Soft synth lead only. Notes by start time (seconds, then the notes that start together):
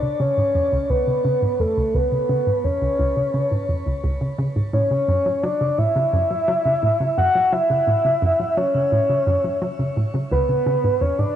Already playing: D5
0.20 C#5
0.90 B4
1.60 A4
1.95 B4
2.64 C#5
4.73 C#5
5.43 D5
5.78 E5
7.18 F#5
7.53 E5
8.57 C#5
10.32 B4
11.01 C#5
11.19 D5